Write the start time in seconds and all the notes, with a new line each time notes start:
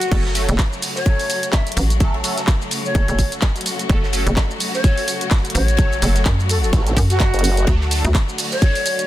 Already playing: F#4
0.01 closed hi-hat, shaker
0.11 F#1 C#3 F#3 A3 C#4 F#4 A4, kick, closed hi-hat, ride, crash, shaker
0.26 snare
0.35 F#3 A3 C#4 A4, open hi-hat, ride, shaker
0.49 F#1, closed hi-hat, shaker
0.58 kick, snare, clap, closed hi-hat, ride, shaker
0.73 shaker
0.82 open hi-hat, shaker
0.96 C#5, snare, shaker
1.06 F#3 A3 C#4 A4, kick, closed hi-hat, ride, shaker
1.19 open hi-hat, shaker
1.30 open hi-hat, ride, shaker
1.43 closed hi-hat, shaker
1.52 E5, kick, snare, clap, closed hi-hat, ride, shaker
1.67 closed hi-hat, shaker
1.72 closed hi-hat
1.77 A1, open hi-hat, ride, shaker
1.90 closed hi-hat, shaker
2.00 F#3 A3 C#4 A4, kick, closed hi-hat, ride, shaker
2.14 ride
2.24 F#3 A3 C#4 A4, open hi-hat, ride, shaker
2.38 snare, closed hi-hat, shaker
2.47 kick, snare, clap, closed hi-hat, ride, shaker
2.62 ride, shaker
2.71 open hi-hat, ride, shaker
2.85 C#5, shaker
2.95 F#1 F#3 A3 C#4 A4, kick, closed hi-hat, ride, shaker
3.08 F#1, closed hi-hat, shaker
3.19 kick, open hi-hat, ride, shaker
3.32 closed hi-hat, shaker
3.42 kick, snare, clap, closed hi-hat, ride, shaker
3.56 closed hi-hat, shaker
3.61 closed hi-hat
3.66 open hi-hat, ride, shaker
3.79 closed hi-hat, shaker
3.89 F#1 F#3 A3 C#4 A4, kick, closed hi-hat, ride, shaker
4.03 snare
4.13 F#3 A3 C#4 A4, open hi-hat, ride, shaker
4.27 F#1, closed hi-hat, shaker
4.36 kick, snare, clap, closed hi-hat, ride, shaker
4.51 shaker
4.60 open hi-hat, shaker
4.74 C#5, snare, shaker
4.84 F#3 A3 C#4 A4, kick, closed hi-hat, ride, shaker
4.98 open hi-hat, shaker
5.08 open hi-hat, ride, shaker
5.21 closed hi-hat, shaker
5.31 kick, snare, clap, closed hi-hat, ride, shaker
5.45 closed hi-hat, shaker
5.50 closed hi-hat
5.54 A1 C#5, open hi-hat, ride, shaker
5.68 closed hi-hat, shaker
5.77 F#3 A3 C#4 A4, kick, closed hi-hat, ride, shaker
5.92 ride, shaker
6.02 F#1 F#3 A3 C#4 A4, open hi-hat, ride, shaker
6.15 snare, closed hi-hat, shaker
6.25 F#2, kick, snare, clap, closed hi-hat, ride, shaker
6.40 ride, shaker
6.49 A4, open hi-hat, ride, shaker
6.63 A4, shaker
6.73 A1 F#3 A3 C#4 A4, kick, closed hi-hat, ride, shaker
6.87 closed hi-hat, shaker
6.97 F#2, kick, open hi-hat, ride, shaker
7.10 F#3 A3 C#4 F#4 A4, closed hi-hat, shaker
7.19 kick, snare, clap, closed hi-hat, ride, shaker
7.34 F#1, closed hi-hat, shaker
7.39 closed hi-hat
7.44 open hi-hat, ride, shaker
7.57 closed hi-hat, shaker
7.67 D2 D3 F#3 A3 D4 A4, kick, closed hi-hat, ride, shaker
7.81 snare
7.91 F#3 A3 D4 A4, open hi-hat, ride, shaker
8.05 D2, closed hi-hat, shaker
8.14 kick, snare, clap, closed hi-hat, ride, shaker
8.29 shaker
8.38 open hi-hat, shaker
8.52 C#5, snare, shaker
8.62 F#3 A3 D4 A4, kick, closed hi-hat, ride, shaker
8.75 open hi-hat, shaker
8.86 open hi-hat, ride, shaker
8.99 closed hi-hat, shaker